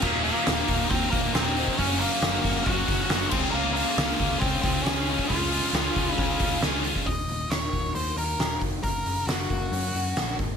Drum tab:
CC |x---------------|--------------x-|----------------|----------------|
HH |--o-o-o-o-o-o-o-|o-o-o-o-o-o-o---|--o-o-o-o-o-o-o-|o-o-o-o-o-o-o-o-|
SD |----o-------o---|----o-------o---|----o-------o---|----o-------o---|
BD |o-----o-o-o----o|o-----o-o-o---o-|------o-o-o----o|o-----o-o-o----o|

CC |----------------|----------------|
HH |o-o-o-o-o-o-o-o-|o-o-o-o-o-o-o-o-|
SD |----o-------o---|----o-------o---|
BD |o-----o-------o-|o-----o-------o-|